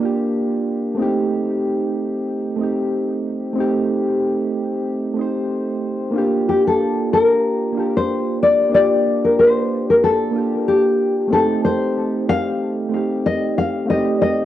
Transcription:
Already playing: F4 G4
0.00 A#3 D4 F4
0.05 G4
0.95 A3 C4
1.00 D#4 G4
2.56 A3 C4
2.61 D#4 G4
3.53 A3 C4
3.58 D#4 G4
5.14 A3 C4
5.19 D#4 C5
6.11 A#3 D4
6.16 F4 G4
6.49 G4
6.67 A4
7.13 A#4
7.72 A#3 D4
7.77 F4 G4
7.97 C5
8.43 D5
8.69 A#3 D4
8.74 F4 G4 D5
9.25 A#4
9.39 C5
9.90 A#4
10.04 A4
10.31 A#3 D4
10.36 F4 G4
10.68 G4
11.28 A3 C4
11.32 D#4 G4 A4
11.65 C5
12.29 F5
12.89 A3 C4
12.94 D#4 G4
13.26 D#5
13.58 F5
13.86 A3 C4
13.90 D#4 G4 D#5
14.22 D#5

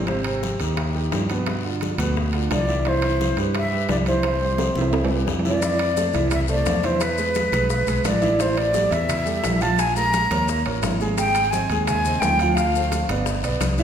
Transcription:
Already playing: G#1
0.07 C3 C4 C5, high bongo, high conga, high timbale, long guiro
0.24 C3 C4 C5, high conga, high timbale
0.43 high bongo, high conga, short guiro
0.60 D#2 D#3 D#4 G4, high bongo, high conga, high timbale, short guiro
0.77 high bongo, high conga, high timbale, long guiro
0.95 D#3 D#4 G4, high bongo, high conga
1.12 G2, high bongo, low bongo, high conga, high timbale, low timbale, short guiro
1.29 B2 B3 B4, high bongo, high conga, high timbale, short guiro
1.46 high bongo, high conga, high timbale, long guiro
1.65 D3 D4 F4, high bongo, high conga
1.81 high bongo, high conga, high timbale, short guiro
1.98 D2 B2 B3 B4, high bongo, high conga, high timbale, short guiro
2.17 high bongo, high conga, long guiro
2.33 D3 D4 F4, high conga, high timbale
2.50 C2 D5, high bongo, low bongo, high conga, high timbale, low timbale, short guiro
2.68 E3 E4 E5, high bongo, short guiro
2.85 E3 E4 C5 E5, high bongo, high conga, high timbale, long guiro
3.02 E3 E4 E5, high conga, high timbale
3.21 high bongo, high conga, short guiro
3.37 G2 G3 G4 B4, high bongo, high conga, high timbale, short guiro
3.55 E5, high bongo, high conga, high timbale, long guiro
3.72 G3 G4 B4, high bongo, high conga
3.89 C2 D5, high bongo, low bongo, high conga, high timbale, low timbale, short guiro
4.06 E3 E4 C5 E5, high bongo, high conga, high timbale, short guiro
4.23 high bongo, high conga, high timbale, long guiro
4.41 G3 G4 C5, high bongo, high conga
4.58 high bongo, high conga, high timbale, short guiro
4.75 C2 E3 E4 E5, high bongo, high conga, short guiro
4.81 high timbale
4.93 high bongo, high conga, high timbale, long guiro
5.04 low timbale
5.10 G3 G4 B4, high conga
5.27 F2, high bongo, low bongo, high conga, low timbale, short guiro
5.39 low timbale
5.45 E3 E4 D5 E5, high bongo, high conga, short guiro
5.51 low timbale
5.62 E3 E4 E5, high bongo, high conga, high timbale, long guiro, maracas
5.79 high conga, high timbale
5.97 A3 A4 C5, high bongo, high conga, short guiro, maracas
6.13 C2 E3 E4 E5, high bongo, high timbale, short guiro, maracas
6.31 E5, high bongo, high conga, low conga, high timbale, long guiro, maracas
6.48 A3 A4 C5 D5, high bongo, high conga, maracas
6.66 E2, high bongo, low bongo, high conga, high timbale, short guiro, maracas
6.83 E3 E4 C5 E5, high bongo, high conga, high timbale, short guiro, maracas
7.00 B4, high bongo, high conga, high timbale, long guiro, maracas
7.18 G#3 G#4 B4, high bongo, high conga, maracas
7.35 high bongo, high conga, high timbale, short guiro, maracas
7.52 B1 G#3 G#4 B4, high bongo, high conga, high timbale, short guiro, maracas
7.70 high bongo, high conga, long guiro, maracas
7.87 B1 G#3 G#4 B4, high conga, high timbale, maracas
8.04 A1 D5, high bongo, low bongo, high conga, high timbale, low timbale, short guiro, maracas
8.22 E3 E4 E5, high bongo, short guiro, maracas
8.39 E3 E4 C5 E5, high bongo, high conga, high timbale, long guiro, maracas
8.57 D5, high conga, high timbale
8.73 G3 G4 A4, high bongo, high conga, short guiro, maracas
8.90 E2 E3 E4 E5, high bongo, high conga, high timbale, short guiro, maracas
9.09 high bongo, high conga, low conga, high timbale, maracas
9.25 G3 G4 A4, high bongo, high conga, maracas
9.44 A#1, high bongo, low bongo, high conga, high timbale, low timbale, short guiro, maracas
9.61 F3 F4 F5 A5, high bongo, high conga, high timbale, short guiro, maracas
9.78 G#5, high bongo, high timbale, long guiro, maracas
9.96 G#3 G#4 A#4 A#5, high bongo, high conga, maracas
10.13 high bongo, high conga, high timbale, short guiro, maracas
10.30 D#2 A#3 A#4 C#5, high bongo, high conga, high timbale, short guiro, maracas
10.48 high bongo, long guiro, maracas
10.66 A1 A#3 A#4 C#5, high conga, high timbale
10.82 G#1, high bongo, low bongo, high conga, high timbale, low timbale, short guiro, maracas
11.00 G#3 G#4 G#5, high bongo, high conga, short guiro, maracas
11.17 G#3 G#4 G5, high bongo, high conga, high timbale, long guiro, maracas
11.35 high conga, high timbale, maracas
11.51 C4 C5 D#5 G#5, high bongo, high conga, short guiro, maracas
11.70 D#2 G#3 G#4 G#5, high timbale, short guiro, maracas
11.87 G#5, high bongo, high conga, low conga, high timbale, long guiro, maracas
12.05 C4 C5 D#5, high bongo, high conga, low conga, maracas
12.20 D2 G5, high bongo, low bongo, high conga, high timbale, low timbale, short guiro, maracas
12.39 F3 F4 F5, high bongo, high conga, high timbale, short guiro, maracas
12.55 F5, high bongo, high conga, high timbale, long guiro, maracas
12.75 A3 A4 C5, high bongo, high conga, maracas
12.92 high bongo, high conga, high timbale, short guiro, maracas
13.09 G1 B3 B4 D5, high bongo, high conga, high timbale, short guiro, maracas
13.26 high bongo, high conga, long guiro, maracas
13.43 B1 B3 B4 D5, high conga, high timbale, maracas
13.60 C2, high bongo, low bongo, high conga, high timbale, short guiro, maracas
13.78 E3 E4 D5 E5, high bongo, high conga, short guiro, maracas

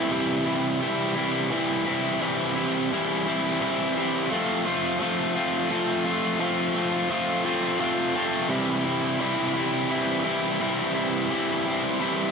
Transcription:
Already playing: E3 A3 C4 E4
0.11 C3 E3 G3 C4 E4
0.46 G3 C4 E4
0.81 E3 G3 C4 E4
1.16 G3 C4 E4
1.51 E3 G3 C4 E4
1.86 G3 C4 E4
2.20 C3 E3 G3 C4 E4
2.56 G3 C4 E4
2.91 E3 G3 C4 E4
3.25 G3 C4 E4
3.61 E3 G3 C4 E4
3.95 G3 C4 E4
4.30 F3 A3 C4 F4
4.65 A3 C4 F4
5.00 F3 A3 C4 F4
5.35 A3 C4 F4
5.70 F3 A3 C4 F4
6.05 A3 C4 F4
6.39 F3 A3 C4 F4
6.74 A3 C4 F4
7.09 F3 A3 C4 F4
7.44 A3 C4 F4
7.79 F3 A3 C4 F4
8.15 A3 C4 F4
8.49 C3 E3 G3 C4 E4
8.84 G3 C4 E4
9.19 E3 G3 C4 E4
9.54 G3 C4 E4
9.89 E3 G3 C4 E4
10.24 G3 C4 E4
10.60 C3 E3 G3 C4 E4
10.95 G3 C4 E4
11.30 E3 G3 C4 E4
11.65 G3 C4 E4
12.00 E3 G3 C4 E4

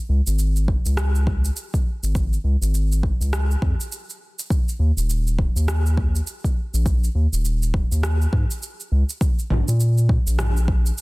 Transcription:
0.09 C#2
0.27 G#1, cabasa
0.39 cabasa
0.56 cabasa
0.68 kick
0.86 C#2, cabasa
0.97 cross-stick, cabasa
1.15 cabasa
1.27 kick
1.45 cabasa
1.57 cabasa
1.74 kick, cabasa
2.03 G#1, cabasa
2.15 kick, cabasa
2.33 cabasa
2.44 C#2
2.62 G#1, cabasa
2.74 cabasa
2.92 cabasa
3.03 kick
3.21 C#2, cabasa
3.33 cross-stick, cabasa
3.51 cabasa
3.62 F2, kick
3.81 cabasa
3.92 cabasa
4.10 cabasa
4.39 cabasa
4.50 kick, cabasa
4.69 cabasa
4.79 D#2
4.97 D#1, cabasa
5.10 cabasa
5.27 cabasa
5.39 kick
5.56 D#2, cabasa
5.68 cross-stick, cabasa
5.86 cabasa
5.97 kick
6.16 cabasa
6.27 cabasa
6.44 kick, cabasa
6.74 A#1, cabasa
6.86 kick, cabasa
7.04 cabasa
7.15 D#2
7.33 D#1, cabasa
7.45 cabasa
7.63 cabasa
7.74 kick
7.91 D#2, cabasa
8.03 cross-stick, cabasa
8.21 cabasa
8.33 G#2, kick
8.51 cabasa
8.63 cabasa
8.80 cabasa
8.92 C#2
9.10 cabasa
9.21 kick, cabasa
9.39 cabasa
9.50 A#1, mid tom
9.68 A#2, cabasa
9.80 cabasa
9.98 cabasa
10.09 kick
10.27 A#1, cabasa
10.39 cross-stick, mid tom, cabasa
10.57 cabasa
10.68 kick
10.86 cabasa
10.98 cabasa

